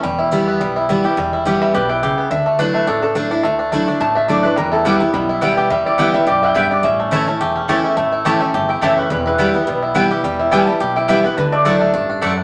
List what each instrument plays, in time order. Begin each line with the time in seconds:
Already playing: five-string banjo E3 E4
0.03 upright bass E1, steel-string acoustic guitar E2, five-string banjo G3
0.19 five-string banjo E4
0.31 steel-string acoustic guitar E3 G3 B3 E4, five-string banjo G3
0.48 five-string banjo B3
0.60 upright bass B1, steel-string acoustic guitar B2, five-string banjo G3
0.76 five-string banjo E4
0.89 steel-string acoustic guitar E3 G3 B3 E4, five-string banjo G3
1.04 steel-string acoustic guitar B3 E4, five-string banjo G4
1.17 upright bass E1, steel-string acoustic guitar E2, five-string banjo G3
1.33 five-string banjo E4
1.45 steel-string acoustic guitar E3 G3 B3 E4, five-string banjo G4
1.61 five-string banjo G3, resonator guitar played with a steel bar E5
1.74 upright bass B1, steel-string acoustic guitar B2, five-string banjo G4, resonator guitar played with a steel bar B4
1.89 five-string banjo E4, resonator guitar played with a steel bar G5
2.03 steel-string acoustic guitar C#3, five-string banjo G4
2.18 five-string banjo B3
2.31 upright bass D2, steel-string acoustic guitar D3, five-string banjo D4, resonator guitar played with a steel bar E5
2.46 five-string banjo A3
2.59 steel-string acoustic guitar F#3 A3 D4 E4, five-string banjo D4, resonator guitar played with a steel bar B4
2.74 five-string banjo A3
2.87 upright bass A1, steel-string acoustic guitar A2, five-string banjo D4, resonator guitar played with a steel bar A4
3.02 five-string banjo D4, resonator guitar played with a steel bar A4
3.15 steel-string acoustic guitar F#3 A3 D4 E4, five-string banjo D4
3.31 five-string banjo D4, steel-string acoustic guitar D4 E4
3.43 upright bass D2, steel-string acoustic guitar D3, five-string banjo A3
3.59 five-string banjo D4
3.72 steel-string acoustic guitar F#3 A3 D4 E4, five-string banjo A3
3.88 five-string banjo D4, steel-string acoustic guitar D4 E4
4.00 upright bass A1, steel-string acoustic guitar A2, five-string banjo A3, resonator guitar played with a steel bar A5
4.15 five-string banjo D4, resonator guitar played with a steel bar E5
4.28 steel-string acoustic guitar F#3 A3 D4 E4, five-string banjo A3, resonator guitar played with a steel bar D5
4.43 five-string banjo D4, steel-string acoustic guitar D4 E4, resonator guitar played with a steel bar B4
4.56 upright bass E2, steel-string acoustic guitar E2, five-string banjo G3, resonator guitar played with a steel bar A#4
4.72 five-string banjo E4, resonator guitar played with a steel bar A4
4.85 steel-string acoustic guitar E3 G3 B3 E4, five-string banjo G3, mandolin B3 E4 B4 G5, resonator guitar played with a steel bar G4
5.00 five-string banjo B3, steel-string acoustic guitar B3 E4, resonator guitar played with a steel bar E4
5.13 upright bass B1, steel-string acoustic guitar B2, five-string banjo G3, resonator guitar played with a steel bar E4
5.29 five-string banjo E4
5.41 steel-string acoustic guitar E3 G3 B3 E4, five-string banjo G3, mandolin B3 E4 B4 G5
5.57 five-string banjo G4, resonator guitar played with a steel bar G5
5.70 upright bass E2, steel-string acoustic guitar E2, five-string banjo G3, resonator guitar played with a steel bar E5
5.86 five-string banjo E4, resonator guitar played with a steel bar D5
5.98 steel-string acoustic guitar E3 G3 B3 E4, mandolin B3 E4 B4 G5, five-string banjo G4, resonator guitar played with a steel bar G5
6.14 five-string banjo G3, steel-string acoustic guitar B3 E4, resonator guitar played with a steel bar E5
6.27 upright bass B1, steel-string acoustic guitar F#2, five-string banjo G4, resonator guitar played with a steel bar D5
6.42 five-string banjo E4, resonator guitar played with a steel bar G5
6.54 steel-string acoustic guitar G2, mandolin B3 E4 B4 G5, five-string banjo G4, resonator guitar played with a steel bar E5
6.71 five-string banjo B3, resonator guitar played with a steel bar D5
6.83 upright bass A1, steel-string acoustic guitar A2, five-string banjo C#4, resonator guitar played with a steel bar E5
7.00 five-string banjo A3
7.11 steel-string acoustic guitar E3 A3 C#4 E4, mandolin A3 E4 C#5 A5, five-string banjo E4
7.27 five-string banjo A3, steel-string acoustic guitar C#4 E4
7.41 upright bass E1, steel-string acoustic guitar E2, five-string banjo G4
7.56 five-string banjo C#4
7.68 steel-string acoustic guitar E3 A3 C#4 E4, mandolin A3 E4 C#5 A5, five-string banjo G4
7.84 five-string banjo E4
7.97 upright bass A1, steel-string acoustic guitar A2, five-string banjo A3
8.12 five-string banjo E4
8.25 steel-string acoustic guitar E3 A3 C#4 E4, mandolin A3 E4 C#5 A5, five-string banjo G4, resonator guitar played with a steel bar A5
8.40 five-string banjo A3, steel-string acoustic guitar C#4 E4
8.54 upright bass G1, steel-string acoustic guitar E2, five-string banjo G4
8.69 five-string banjo E4, resonator guitar played with a steel bar G5
8.81 upright bass F#1, steel-string acoustic guitar E3 A3 C#4 E4, mandolin A3 E4 C#5 A5, five-string banjo G4, resonator guitar played with a steel bar E5
8.98 five-string banjo C#4, resonator guitar played with a steel bar B4
9.10 upright bass E1, steel-string acoustic guitar E2, five-string banjo G3, resonator guitar played with a steel bar B4
9.26 five-string banjo E4, resonator guitar played with a steel bar B4
9.38 steel-string acoustic guitar E3 G3 B3 E4, five-string banjo G3, mandolin B3 E4 B4 G5
9.54 five-string banjo B3, steel-string acoustic guitar B3 E4
9.67 upright bass B1, steel-string acoustic guitar B2, five-string banjo G3
9.82 five-string banjo E4
9.95 steel-string acoustic guitar E3 G3 B3 E4, five-string banjo G3, mandolin B3 E4 B4 G5
10.11 steel-string acoustic guitar B3 E4, five-string banjo G4
10.23 upright bass E1, steel-string acoustic guitar E2, five-string banjo G3
10.39 five-string banjo E4
10.51 steel-string acoustic guitar E3 G3 B3 E4, mandolin B3 E4 B4 G5, five-string banjo G4, resonator guitar played with a steel bar A5
10.67 five-string banjo G3, steel-string acoustic guitar B3 E4
10.80 upright bass B1, steel-string acoustic guitar B2, five-string banjo G4
10.96 five-string banjo E4, resonator guitar played with a steel bar G5
11.08 steel-string acoustic guitar E3 G3 B3 E4, mandolin B3 E4 B4 G5, five-string banjo G4, resonator guitar played with a steel bar E5
11.24 five-string banjo B3, steel-string acoustic guitar B3 E4, resonator guitar played with a steel bar B4
11.37 upright bass D2, steel-string acoustic guitar D3, five-string banjo D4, resonator guitar played with a steel bar B4
11.52 five-string banjo A3, resonator guitar played with a steel bar D5
11.65 steel-string acoustic guitar F#3 A3 D4 E4, mandolin A3 E4 D5 F#5, five-string banjo D4
11.81 five-string banjo A3
11.93 upright bass A1, steel-string acoustic guitar G2, five-string banjo D4
12.09 five-string banjo D4
12.21 steel-string acoustic guitar F#2, mandolin A3 E4 D5 F#5, five-string banjo D4
12.37 five-string banjo D4